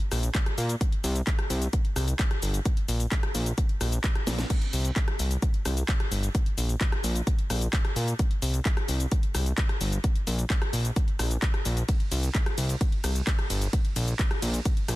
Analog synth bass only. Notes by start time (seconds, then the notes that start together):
0.12 A#1
0.58 A#2
1.04 C2
1.50 C2
1.96 C2
2.42 G1
2.88 A#1
3.35 A#1
3.81 A#1
4.27 A#1
4.73 C2
5.19 C2
5.65 C2
6.11 G1
6.58 A#1
7.04 A#1
7.50 A#1
7.96 A#2
8.42 C2
8.89 C2
9.35 C2
9.81 G1
10.27 A#1
10.73 A#1
11.19 A#1
11.66 A#1
12.12 C2
12.58 C2
13.04 C2
13.50 G1
13.96 A#1
14.42 A#1
14.88 A#1